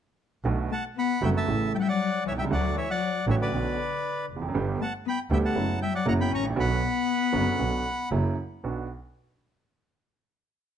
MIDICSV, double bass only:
0, 0, Header, 1, 2, 480
1, 0, Start_track
1, 0, Key_signature, 2, "minor"
1, 0, Tempo, 511945
1, 432, Time_signature, 4, 2, 24, 8
1, 10100, End_track
2, 0, Start_track
2, 0, Title_t, "Double bass"
2, 0, Program_c, 0, 43
2, 415, Note_on_c, 0, 35, 64
2, 627, Note_off_c, 0, 35, 0
2, 1143, Note_on_c, 0, 30, 65
2, 1353, Note_off_c, 0, 30, 0
2, 1388, Note_on_c, 0, 33, 44
2, 1595, Note_off_c, 0, 33, 0
2, 2106, Note_on_c, 0, 36, 47
2, 2347, Note_off_c, 0, 36, 0
2, 2352, Note_on_c, 0, 38, 67
2, 2556, Note_off_c, 0, 38, 0
2, 3067, Note_on_c, 0, 33, 75
2, 3270, Note_off_c, 0, 33, 0
2, 3304, Note_on_c, 0, 35, 48
2, 3507, Note_off_c, 0, 35, 0
2, 4017, Note_on_c, 0, 29, 42
2, 4254, Note_off_c, 0, 29, 0
2, 4260, Note_on_c, 0, 31, 70
2, 4460, Note_off_c, 0, 31, 0
2, 4973, Note_on_c, 0, 38, 76
2, 5172, Note_off_c, 0, 38, 0
2, 5209, Note_on_c, 0, 30, 49
2, 5410, Note_off_c, 0, 30, 0
2, 5685, Note_on_c, 0, 30, 73
2, 5888, Note_off_c, 0, 30, 0
2, 5929, Note_on_c, 0, 33, 49
2, 6155, Note_off_c, 0, 33, 0
2, 6160, Note_on_c, 0, 35, 75
2, 6365, Note_off_c, 0, 35, 0
2, 6887, Note_on_c, 0, 30, 71
2, 7089, Note_off_c, 0, 30, 0
2, 7123, Note_on_c, 0, 35, 45
2, 7329, Note_off_c, 0, 35, 0
2, 7608, Note_on_c, 0, 30, 69
2, 7815, Note_off_c, 0, 30, 0
2, 8100, Note_on_c, 0, 35, 39
2, 8303, Note_off_c, 0, 35, 0
2, 10100, End_track
0, 0, End_of_file